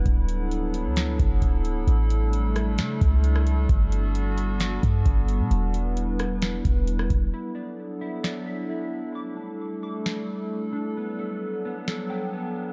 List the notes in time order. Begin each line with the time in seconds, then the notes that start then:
Already playing: E4
0.06 D1 F#3 B3 D4 A4, kick, closed hi-hat
0.29 closed hi-hat
0.51 closed hi-hat
0.74 closed hi-hat
0.85 D2
0.96 snare, closed hi-hat
1.20 F#1, kick, closed hi-hat
1.42 D1, kick, closed hi-hat
1.65 closed hi-hat
1.76 C#1
1.87 A1 G3 A3 D4, closed hi-hat
2.10 closed hi-hat
2.33 closed hi-hat
2.56 cross-stick, closed hi-hat
2.78 C#3, snare, closed hi-hat
3.01 C#2, kick, closed hi-hat
3.24 closed hi-hat
3.36 cross-stick
3.47 closed hi-hat
3.69 G1 B3 F#4, kick, closed hi-hat
3.92 closed hi-hat
4.15 closed hi-hat
4.38 closed hi-hat
4.60 snare, closed hi-hat
4.83 G2, kick, closed hi-hat
5.06 G1, kick, closed hi-hat
5.28 closed hi-hat
5.40 B2
5.51 E1 E4 B4, closed hi-hat
5.74 closed hi-hat
5.97 closed hi-hat
6.19 cross-stick, closed hi-hat
6.42 snare, closed hi-hat
6.65 E1, kick, closed hi-hat
6.87 closed hi-hat
6.99 cross-stick
7.10 E1, kick, closed hi-hat
7.33 F#3 B3 D4 E4 A4
7.55 D5
8.01 E4
8.23 D5, snare
8.47 E5
8.69 E4
9.15 G3 A3 A4 D6
9.37 D4
9.83 D6
10.06 snare
10.73 D4
10.97 F#3 B3 D4
11.19 A4
11.65 B3
11.88 A4, snare
12.10 G5
12.33 B3